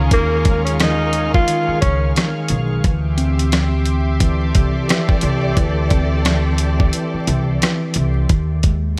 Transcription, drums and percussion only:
0.11 kick loud
0.11 closed hi-hat medium
0.45 kick loud
0.45 closed hi-hat medium
0.67 closed hi-hat medium
0.80 cross-stick medium
0.80 snare loud
0.80 closed hi-hat medium
1.13 closed hi-hat medium
1.34 kick medium
1.48 closed hi-hat loud
1.82 kick loud
1.82 closed hi-hat medium
2.16 cross-stick medium
2.16 snare loud
2.16 closed hi-hat medium
2.48 closed hi-hat medium
2.84 kick loud
2.84 closed hi-hat medium
3.18 closed hi-hat medium
3.39 closed hi-hat medium
3.52 cross-stick medium
3.52 snare loud
3.52 closed hi-hat medium
3.86 closed hi-hat medium
4.20 kick medium
4.20 closed hi-hat medium
4.55 kick loud
4.55 closed hi-hat medium
4.89 cross-stick loud
4.89 snare loud
4.89 closed hi-hat medium
5.09 kick medium
5.21 closed hi-hat medium
5.57 kick loud
5.57 closed hi-hat medium
5.90 kick loud
5.90 closed hi-hat medium
6.25 cross-stick medium
6.25 snare loud
6.25 closed hi-hat medium
6.58 closed hi-hat medium
6.80 kick loud
6.93 closed hi-hat medium
7.27 closed hi-hat medium
7.62 cross-stick medium
7.62 snare loud
7.62 closed hi-hat medium
7.94 closed hi-hat medium
8.29 kick loud
8.29 closed hi-hat medium
8.63 kick loud
8.63 closed hi-hat medium

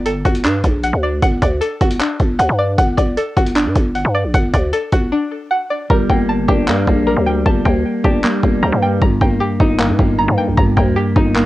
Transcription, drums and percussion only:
0.06 closed hi-hat medium
0.25 kick medium
0.25 closed hi-hat medium
0.35 closed hi-hat medium
0.44 clap loud
0.44 closed hi-hat medium
0.64 kick loud
0.64 closed hi-hat medium
0.83 closed hi-hat medium
1.22 kick loud
1.22 closed hi-hat medium
1.42 kick medium
1.42 closed hi-hat medium
1.61 closed hi-hat medium
1.81 kick medium
1.81 closed hi-hat medium
1.91 closed hi-hat medium
2.00 clap loud
2.00 closed hi-hat medium
2.20 kick loud
2.20 closed hi-hat medium
2.39 closed hi-hat medium
2.78 kick loud
2.78 closed hi-hat medium
2.98 kick medium
2.98 closed hi-hat medium
3.17 closed hi-hat medium
3.37 kick medium
3.37 closed hi-hat medium
3.46 closed hi-hat medium
3.56 clap loud
3.56 closed hi-hat medium
3.75 kick medium
3.75 closed hi-hat medium
3.95 closed hi-hat medium
4.34 kick loud
4.34 closed hi-hat medium
4.54 kick medium
4.54 closed hi-hat medium
4.73 closed hi-hat medium
4.92 kick medium
4.92 closed hi-hat medium
5.90 kick loud
6.10 kick medium
6.48 kick medium
6.68 clap loud
6.87 kick medium
7.46 kick loud
7.65 kick medium
8.04 kick medium
8.24 clap loud
8.43 kick loud
9.02 kick loud
9.21 kick medium
9.60 kick medium
9.80 clap loud
9.99 kick loud
10.58 kick loud
10.77 kick medium
11.16 kick medium
11.36 clap loud

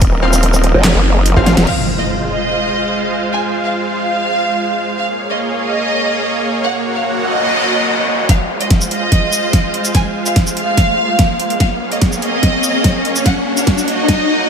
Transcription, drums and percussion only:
0.02 kick loud
0.02 closed hi-hat medium
0.33 closed hi-hat medium
0.33 shaker medium
0.43 closed hi-hat medium
0.54 shaker medium
0.64 closed hi-hat medium
0.84 snare loud
0.84 clap loud
0.84 closed hi-hat medium
1.26 closed hi-hat medium
1.36 kick medium
1.46 snare medium
1.46 closed hi-hat medium
1.57 snare medium
1.57 closed hi-hat medium
1.67 crash medium
8.29 kick medium
8.29 snare soft
8.29 closed hi-hat medium
8.61 closed hi-hat medium
8.70 kick medium
8.70 snare soft
8.70 closed hi-hat medium
8.81 shaker soft
8.91 closed hi-hat medium
9.12 kick loud
9.12 snare medium
9.12 closed hi-hat medium
9.33 shaker medium
9.53 kick loud
9.53 snare medium
9.53 closed hi-hat medium
9.74 closed hi-hat medium
9.85 closed hi-hat medium
9.85 shaker medium
9.95 kick loud
9.95 snare soft
9.95 closed hi-hat medium
10.26 closed hi-hat medium
10.26 shaker medium
10.36 kick loud
10.36 snare medium
10.36 closed hi-hat medium
10.47 shaker soft
10.57 closed hi-hat medium
10.77 kick medium
10.77 snare medium
10.77 closed hi-hat medium
11.19 kick loud
11.19 snare medium
11.19 closed hi-hat medium
11.40 closed hi-hat soft
11.50 closed hi-hat medium
11.60 kick medium
11.60 snare medium
11.60 closed hi-hat medium
11.92 closed hi-hat medium
12.02 kick medium
12.02 snare medium
12.02 closed hi-hat medium
12.12 shaker soft
12.22 closed hi-hat soft
12.43 kick loud
12.43 snare medium
12.43 closed hi-hat medium
12.64 shaker medium
12.84 kick loud
12.84 snare medium
12.84 closed hi-hat medium
13.05 closed hi-hat soft
13.16 closed hi-hat medium
13.16 shaker medium
13.26 kick loud
13.26 snare medium
13.26 closed hi-hat medium
13.57 closed hi-hat medium
13.57 shaker medium
13.67 kick loud
13.67 snare medium
13.67 closed hi-hat medium
13.78 shaker soft
13.88 closed hi-hat soft
14.08 kick loud
14.08 snare medium
14.08 closed hi-hat medium

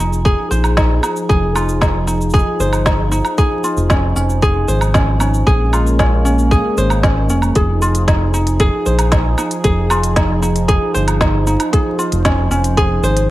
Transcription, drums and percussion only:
0.13 shaker soft
0.25 kick loud
0.25 shaker soft
0.51 shaker medium
0.64 low woodblock medium
0.64 shaker soft
0.77 kick loud
0.77 snare loud
0.77 shaker soft
1.03 low woodblock medium
1.03 shaker medium
1.16 shaker soft
1.30 kick loud
1.30 shaker soft
1.56 low woodblock medium
1.56 shaker medium
1.69 shaker soft
1.82 kick medium
1.82 snare loud
1.82 shaker soft
2.08 shaker medium
2.21 shaker soft
2.30 kick loud
2.30 shaker soft
2.34 shaker soft
2.39 shaker soft
2.60 shaker medium
2.73 low woodblock medium
2.73 shaker soft
2.86 kick medium
2.86 snare loud
2.86 shaker soft
3.12 shaker medium
3.25 low woodblock medium
3.25 shaker soft
3.38 kick loud
3.38 shaker soft
3.64 shaker medium
3.77 shaker soft
3.90 kick loud
3.90 snare loud
3.90 shaker soft
4.16 shaker medium
4.30 shaker soft
4.42 kick loud
4.42 shaker soft
4.68 shaker medium
4.81 low woodblock medium
4.81 shaker soft
4.94 kick medium
4.94 snare loud
4.94 shaker soft
5.20 low woodblock medium
5.20 shaker medium
5.34 shaker soft
5.47 kick loud
5.47 shaker soft
5.73 low woodblock medium
5.73 shaker medium
5.87 shaker soft
5.99 kick medium
5.99 snare medium
5.99 shaker soft
6.26 shaker medium
6.39 shaker soft
6.51 kick loud
6.51 shaker soft
6.78 shaker medium
6.90 low woodblock medium
6.90 shaker soft
7.03 kick loud
7.03 snare medium
7.03 shaker soft
7.30 shaker medium
7.42 low woodblock medium
7.42 shaker soft
7.55 kick loud
7.55 closed hi-hat soft
7.55 shaker soft
7.82 shaker medium
7.95 closed hi-hat soft
7.95 shaker soft
8.08 kick medium
8.08 snare medium
8.08 closed hi-hat soft
8.08 shaker soft
8.34 shaker medium
8.47 closed hi-hat soft
8.47 shaker soft
8.60 kick loud
8.60 closed hi-hat soft
8.60 shaker soft
8.86 shaker medium
8.99 closed hi-hat medium
8.99 low woodblock medium
8.99 shaker soft
9.12 kick loud
9.12 snare loud
9.12 closed hi-hat soft
9.12 shaker soft
9.38 low woodblock medium
9.38 shaker medium
9.51 closed hi-hat soft
9.51 shaker soft
9.64 kick loud
9.64 closed hi-hat soft
9.64 shaker soft
9.90 low woodblock medium
9.90 shaker medium
10.03 closed hi-hat medium
10.03 shaker soft
10.16 kick medium
10.16 snare medium
10.16 closed hi-hat soft
10.16 shaker soft
10.43 shaker medium
10.56 closed hi-hat medium
10.56 shaker soft
10.69 kick loud
10.69 closed hi-hat soft
10.69 shaker soft
10.95 shaker medium
11.08 closed hi-hat medium
11.08 low woodblock medium
11.08 shaker soft
11.21 kick loud
11.21 snare loud
11.21 shaker soft
11.47 shaker medium
11.60 closed hi-hat medium
11.60 low woodblock medium
11.60 shaker soft
11.73 kick loud
11.73 closed hi-hat soft
11.73 shaker soft
11.99 shaker medium
12.12 closed hi-hat medium
12.12 shaker soft
12.25 kick medium
12.25 snare loud
12.25 closed hi-hat soft
12.25 shaker soft
12.52 shaker medium
12.64 closed hi-hat medium
12.64 shaker soft
12.77 kick loud
12.77 closed hi-hat soft
12.77 shaker soft
13.04 shaker medium
13.17 closed hi-hat medium
13.17 shaker soft

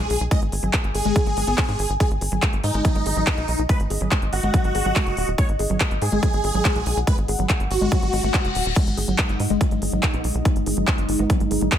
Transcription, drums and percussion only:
0.10 open hi-hat loud
0.21 closed hi-hat soft
0.31 kick loud
0.31 closed hi-hat medium
0.42 closed hi-hat soft
0.52 open hi-hat loud
0.63 closed hi-hat soft
0.73 kick loud
0.73 clap loud
0.73 closed hi-hat medium
0.84 closed hi-hat soft
0.95 open hi-hat loud
1.05 closed hi-hat soft
1.16 kick loud
1.16 closed hi-hat medium
1.26 closed hi-hat soft
1.37 open hi-hat loud
1.58 kick loud
1.58 clap loud
1.58 closed hi-hat medium
1.69 closed hi-hat soft
1.79 open hi-hat loud
1.90 closed hi-hat soft
2.00 kick loud
2.00 closed hi-hat medium
2.11 closed hi-hat soft
2.21 open hi-hat loud
2.32 closed hi-hat soft
2.42 kick loud
2.42 clap loud
2.42 closed hi-hat medium
2.53 closed hi-hat soft
2.64 open hi-hat loud
2.74 closed hi-hat soft
2.85 kick loud
2.85 closed hi-hat medium
2.95 closed hi-hat soft
3.06 open hi-hat loud
3.16 closed hi-hat soft
3.27 kick loud
3.27 clap loud
3.27 closed hi-hat medium
3.38 closed hi-hat soft
3.48 open hi-hat loud
3.59 closed hi-hat soft
3.69 kick loud
3.69 closed hi-hat medium
3.80 closed hi-hat soft
3.90 open hi-hat loud
4.01 closed hi-hat soft
4.12 kick loud
4.12 clap loud
4.12 closed hi-hat medium
4.22 closed hi-hat soft
4.33 open hi-hat loud
4.43 closed hi-hat soft
4.54 kick loud
4.54 closed hi-hat medium
4.64 closed hi-hat soft
4.75 open hi-hat loud
4.85 closed hi-hat soft
4.96 kick loud
4.96 clap loud
4.96 closed hi-hat medium
5.07 closed hi-hat soft
5.17 open hi-hat loud
5.28 closed hi-hat soft
5.38 kick loud
5.38 closed hi-hat loud
5.49 closed hi-hat soft
5.59 open hi-hat loud
5.70 closed hi-hat soft
5.80 kick loud
5.80 clap loud
5.80 closed hi-hat medium
5.91 closed hi-hat soft
6.02 open hi-hat loud
6.12 closed hi-hat soft
6.23 kick loud
6.23 closed hi-hat medium
6.33 closed hi-hat soft
6.44 open hi-hat loud
6.54 closed hi-hat soft
6.65 kick loud
6.65 clap loud
6.65 closed hi-hat medium
6.76 closed hi-hat soft
6.86 open hi-hat loud
6.97 closed hi-hat soft
7.07 kick loud
7.07 closed hi-hat loud
7.18 closed hi-hat soft
7.28 open hi-hat loud
7.39 closed hi-hat soft
7.50 kick loud
7.50 clap loud
7.50 closed hi-hat loud
7.60 closed hi-hat soft
7.71 open hi-hat loud
7.92 kick loud
7.92 closed hi-hat loud
8.02 closed hi-hat soft
8.13 open hi-hat loud
8.23 closed hi-hat soft
8.34 kick loud
8.34 clap loud
8.34 closed hi-hat medium
8.45 closed hi-hat soft
8.55 open hi-hat loud
8.66 closed hi-hat soft
8.76 kick loud
8.76 closed hi-hat loud
8.76 crash medium
8.87 closed hi-hat soft
8.97 open hi-hat loud
9.08 closed hi-hat soft
9.19 kick loud
9.19 clap loud
9.19 closed hi-hat loud
9.29 closed hi-hat soft
9.40 open hi-hat loud
9.50 closed hi-hat soft
9.61 kick loud
9.61 closed hi-hat loud
9.71 closed hi-hat soft
9.82 open hi-hat loud
9.92 closed hi-hat soft
10.03 kick loud
10.03 clap loud
10.03 closed hi-hat loud
10.14 closed hi-hat soft
10.24 open hi-hat loud
10.35 closed hi-hat soft
10.45 kick loud
10.45 closed hi-hat medium
10.56 closed hi-hat soft
10.66 open hi-hat loud
10.77 closed hi-hat soft
10.88 kick loud
10.88 clap loud
10.88 closed hi-hat medium
10.98 closed hi-hat soft
11.09 open hi-hat loud
11.19 closed hi-hat soft
11.30 kick loud
11.30 closed hi-hat loud
11.40 closed hi-hat soft
11.51 open hi-hat loud
11.61 closed hi-hat soft
11.72 kick loud
11.72 clap loud
11.72 closed hi-hat medium

